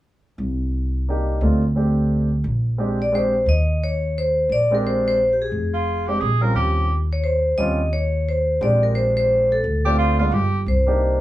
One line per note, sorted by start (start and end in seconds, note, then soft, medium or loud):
0.38 1.37 C2 medium
1.08 1.42 A#3 medium
1.08 1.41 D4 soft
1.08 1.43 D#4 soft
1.08 1.43 G4 medium
1.41 2.40 D2 medium
1.41 1.61 A3 medium
1.41 1.61 C4 soft
1.41 1.61 D4 soft
1.41 1.62 F4 medium
1.75 2.27 A3 soft
1.75 2.27 C4 soft
1.75 2.28 D4 soft
1.75 2.28 G4 medium
2.44 3.43 A#1 medium
2.78 2.98 G#3 medium
2.78 2.98 C4 medium
2.78 2.98 D4 medium
2.78 2.99 G4 medium
3.02 3.07 D5 medium
3.12 3.32 G#3 medium
3.12 3.32 C4 medium
3.12 3.33 D4 medium
3.12 3.33 G4 medium
3.12 3.46 C5 medium
3.46 4.45 D#2 medium
3.46 3.83 D#5 medium
3.84 4.15 C#5 medium
4.18 4.49 C5 medium
4.49 5.48 A#1 medium
4.49 4.71 D5 medium
4.71 5.16 G#3 medium
4.71 5.16 C4 medium
4.71 5.16 D4 medium
4.71 5.17 G4 medium
4.75 4.86 A#4 medium
4.87 5.05 C5 medium
5.08 5.33 C5 medium
5.33 5.41 G4 soft
5.42 6.05 G#4 medium
5.52 6.17 F1 medium
5.73 6.09 F4 medium
6.07 6.20 G#3 medium
6.07 6.20 C4 medium
6.07 6.20 D4 medium
6.07 6.22 G4 medium
6.07 6.21 G4 medium
6.20 6.53 A#1 medium
6.20 6.44 G#4 medium
6.41 6.86 G3 medium
6.41 6.87 C4 soft
6.41 6.87 C#4 soft
6.41 6.87 F4 medium
6.41 6.55 A#4 medium
6.55 7.54 D#2 medium
6.55 6.97 G4 medium
7.13 7.25 C#5 medium
7.24 7.59 C5 medium
7.58 8.57 D#2 medium
7.58 7.77 G3 medium
7.58 7.78 C4 medium
7.58 7.78 C#4 medium
7.58 7.79 F4 medium
7.58 7.90 D#5 loud
7.93 8.28 C#5 medium
8.29 8.60 C5 medium
8.61 9.60 A#1 medium
8.61 9.56 G#3 medium
8.61 9.56 C4 medium
8.61 9.57 D4 medium
8.61 9.57 G4 medium
8.61 8.82 D5 medium
8.83 8.95 A#4 medium
8.95 9.05 C5 medium
9.17 9.52 C5 medium
9.52 10.16 A4 medium
9.64 10.28 D2 medium
9.85 10.17 A3 medium
9.85 10.18 C4 medium
9.85 10.18 D4 medium
9.85 10.18 F4 medium
9.85 9.97 G4 medium
9.99 10.18 F4 medium
10.19 10.31 G#3 medium
10.19 10.31 B3 medium
10.19 10.31 D4 medium
10.19 10.34 F4 medium
10.19 10.32 F4 medium
10.31 10.64 G1 medium
10.31 10.60 G4 medium
10.66 11.21 C2 medium
10.66 11.19 C5 medium
10.86 11.21 A#3 medium
10.86 11.21 D4 medium
10.86 11.21 D#4 medium
10.86 11.21 G4 medium